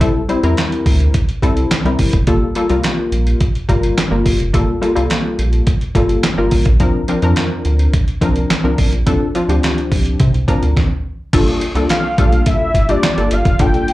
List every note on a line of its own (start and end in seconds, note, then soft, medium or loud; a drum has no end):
0.00 0.12 C2 loud
0.00 0.21 G3 medium
0.00 0.21 C4 medium
0.00 0.21 E4 medium
0.00 0.21 A4 loud
0.00 kick loud
0.00 closed hi-hat medium
0.29 0.39 G3 loud
0.29 0.39 C4 medium
0.29 0.40 E4 medium
0.29 0.40 C5 loud
0.29 closed hi-hat medium
0.43 0.55 E2 loud
0.43 1.14 G3 medium
0.43 1.14 C4 medium
0.43 1.14 E4 medium
0.43 1.14 A#4 loud
0.43 closed hi-hat medium
0.57 snare loud
0.57 clap medium
0.57 closed hi-hat medium
0.72 closed hi-hat soft
0.86 1.09 D2 loud
0.86 kick loud
0.86 open hi-hat medium
1.00 closed hi-hat soft
1.14 kick loud
1.14 closed hi-hat medium
1.29 closed hi-hat soft
1.42 1.65 C2 loud
1.42 1.73 G3 medium
1.42 1.73 C4 medium
1.42 1.73 E4 medium
1.42 1.73 A4 loud
1.42 kick medium
1.42 closed hi-hat medium
1.57 closed hi-hat medium
1.71 snare loud
1.71 clap medium
1.71 closed hi-hat medium
1.85 1.96 C2 medium
1.85 2.15 G3 medium
1.85 2.15 C4 medium
1.85 2.16 E4 medium
1.85 2.16 A#4 medium
1.85 closed hi-hat soft
1.99 2.11 G1 medium
1.99 kick medium
1.99 open hi-hat medium
2.13 2.25 F1 loud
2.13 kick loud
2.13 closed hi-hat medium
2.27 2.39 G1 loud
2.27 2.48 G3 medium
2.27 2.48 A#3 medium
2.27 2.48 F4 medium
2.27 2.48 A4 loud
2.27 kick loud
2.27 closed hi-hat medium
2.55 2.66 G3 medium
2.55 2.66 A#3 medium
2.55 2.66 F4 medium
2.55 2.66 A4 loud
2.55 closed hi-hat medium
2.70 2.81 C2 medium
2.70 3.40 G3 medium
2.70 3.40 A#3 medium
2.70 3.41 F4 medium
2.70 3.41 A#4 loud
2.70 closed hi-hat medium
2.83 snare loud
2.83 clap medium
2.83 closed hi-hat medium
3.12 3.35 A#1 medium
3.12 closed hi-hat medium
3.27 closed hi-hat soft
3.40 kick loud
3.40 closed hi-hat medium
3.55 closed hi-hat soft
3.68 3.92 G1 medium
3.68 3.99 G3 loud
3.68 3.99 A#3 medium
3.68 3.99 F4 medium
3.68 3.99 A#4 loud
3.68 kick medium
3.68 closed hi-hat medium
3.83 closed hi-hat medium
3.98 snare loud
3.98 clap medium
3.98 closed hi-hat medium
4.11 4.23 G1 medium
4.11 4.41 G3 medium
4.11 4.42 A#3 medium
4.11 4.42 F4 medium
4.11 4.42 A#4 loud
4.26 4.37 G1 medium
4.26 kick medium
4.26 open hi-hat medium
4.40 4.51 F1 medium
4.40 closed hi-hat medium
4.53 4.65 G1 loud
4.53 4.74 G3 medium
4.53 4.74 A#3 medium
4.53 4.74 F4 medium
4.53 4.74 A4 loud
4.53 kick loud
4.53 closed hi-hat medium
4.81 4.92 G3 medium
4.81 4.92 A#3 medium
4.81 4.92 F4 medium
4.81 4.92 A4 loud
4.81 closed hi-hat medium
4.95 5.08 C2 loud
4.95 5.66 G3 medium
4.95 5.67 A#3 medium
4.95 5.67 F4 medium
4.95 5.67 A4 loud
4.95 closed hi-hat medium
5.10 snare loud
5.10 clap medium
5.10 closed hi-hat medium
5.39 5.62 A#1 medium
5.39 closed hi-hat medium
5.53 closed hi-hat soft
5.67 kick loud
5.67 closed hi-hat medium
5.81 closed hi-hat soft
5.95 6.18 G1 medium
5.95 6.25 G3 medium
5.95 6.26 A#3 medium
5.95 6.26 F4 medium
5.95 6.26 A4 medium
5.95 kick medium
5.95 closed hi-hat medium
6.09 closed hi-hat medium
6.23 snare loud
6.23 clap medium
6.23 closed hi-hat medium
6.37 6.49 G1 loud
6.37 6.68 G3 medium
6.37 6.68 A#3 medium
6.37 6.68 F4 medium
6.37 6.68 A#4 medium
6.51 6.63 A1 loud
6.51 kick medium
6.51 open hi-hat medium
6.65 6.77 A#1 medium
6.65 kick loud
6.65 closed hi-hat medium
6.80 6.92 C2 loud
6.80 7.00 F3 loud
6.80 7.00 C4 medium
6.80 7.01 D4 medium
6.80 7.01 A#4 loud
6.80 kick loud
6.80 closed hi-hat medium
7.08 7.19 F3 loud
7.08 7.19 C4 medium
7.08 7.19 D4 medium
7.08 7.19 A#4 loud
7.08 closed hi-hat medium
7.22 7.34 F2 medium
7.22 7.93 F3 loud
7.22 7.93 C4 medium
7.22 7.93 D4 medium
7.22 7.94 A#4 loud
7.22 closed hi-hat medium
7.36 snare loud
7.36 clap medium
7.36 closed hi-hat medium
7.65 7.88 D2 medium
7.65 closed hi-hat medium
7.79 closed hi-hat soft
7.93 kick loud
7.93 closed hi-hat medium
8.08 closed hi-hat soft
8.21 8.44 C2 loud
8.21 8.52 F3 medium
8.21 8.52 C4 medium
8.21 8.52 D4 medium
8.21 8.52 A#4 loud
8.21 kick medium
8.21 closed hi-hat medium
8.36 closed hi-hat soft
8.50 snare loud
8.50 clap medium
8.50 closed hi-hat medium
8.64 8.75 C2 medium
8.64 8.94 F3 medium
8.64 8.94 C4 medium
8.64 8.95 D4 medium
8.64 8.95 A#4 medium
8.78 8.90 A1 medium
8.78 kick medium
8.78 open hi-hat medium
8.92 9.04 A#1 medium
8.92 closed hi-hat soft
9.06 9.18 C2 loud
9.06 9.27 F3 medium
9.06 9.27 C4 medium
9.06 9.27 D4 medium
9.06 9.27 A4 loud
9.06 kick loud
9.06 closed hi-hat medium
9.35 9.45 F3 medium
9.35 9.45 C4 medium
9.35 9.45 D4 medium
9.35 9.46 F4 loud
9.35 closed hi-hat medium
9.48 9.60 D2 loud
9.48 10.20 F3 loud
9.48 10.20 C4 medium
9.48 10.20 D4 medium
9.48 10.20 G4 loud
9.48 closed hi-hat medium
9.63 snare loud
9.63 clap medium
9.63 closed hi-hat medium
9.78 closed hi-hat soft
9.92 10.15 C2 medium
9.92 kick loud
9.92 open hi-hat medium
10.06 closed hi-hat soft
10.20 10.31 C3 loud
10.20 kick loud
10.20 closed hi-hat medium
10.33 10.45 C2 medium
10.33 closed hi-hat soft
10.48 10.76 F3 medium
10.48 10.77 C4 medium
10.48 10.77 D4 medium
10.48 10.77 A#4 loud
10.48 kick medium
10.48 closed hi-hat medium
10.62 10.74 D2 medium
10.62 closed hi-hat medium
10.77 kick medium
10.77 snare medium
11.33 11.45 G1 loud
11.33 11.63 G3 medium
11.33 11.63 A#3 medium
11.33 11.64 D4 medium
11.33 11.64 F4 medium
11.33 11.64 A4 loud
11.33 kick loud
11.33 closed hi-hat medium
11.33 crash loud
11.48 closed hi-hat soft
11.61 closed hi-hat medium
11.75 11.87 C2 medium
11.75 12.06 G3 medium
11.75 12.06 A#3 medium
11.75 12.06 D4 medium
11.75 12.06 F4 medium
11.75 12.06 A4 medium
11.75 closed hi-hat medium
11.89 12.39 F5 medium
11.89 snare loud
11.89 clap medium
11.89 closed hi-hat medium
12.18 12.41 A#1 medium
12.18 12.69 G3 medium
12.18 12.25 A3 medium
12.18 12.69 D4 medium
12.18 12.69 F4 medium
12.18 12.69 A4 medium
12.18 kick loud
12.18 closed hi-hat medium
12.25 12.72 A#3 medium
12.32 closed hi-hat soft
12.39 12.48 F5 medium
12.46 12.92 E5 loud
12.46 kick loud
12.46 closed hi-hat medium
12.74 12.97 G1 medium
12.74 kick medium
12.74 closed hi-hat medium
12.89 13.09 G3 medium
12.89 13.09 A#3 medium
12.89 13.09 D4 medium
12.89 13.09 F4 medium
12.89 13.09 G4 medium
12.89 13.34 D5 loud
12.89 closed hi-hat medium
13.03 snare loud
13.03 clap medium
13.03 closed hi-hat medium
13.17 13.29 G1 medium
13.17 13.47 G3 medium
13.17 13.47 A#3 medium
13.17 13.48 D4 medium
13.17 13.48 F4 medium
13.17 13.48 A4 medium
13.17 closed hi-hat soft
13.31 13.43 G1 loud
13.31 13.62 F5 loud
13.31 closed hi-hat medium
13.45 13.57 F1 medium
13.45 kick loud
13.45 closed hi-hat medium
13.59 13.71 G1 loud
13.59 13.90 G3 medium
13.59 13.90 A#3 medium
13.59 13.90 D4 medium
13.59 13.90 F4 medium
13.59 13.90 A4 medium
13.59 13.93 G5 loud
13.59 kick loud
13.59 closed hi-hat medium
13.74 closed hi-hat soft
13.88 closed hi-hat medium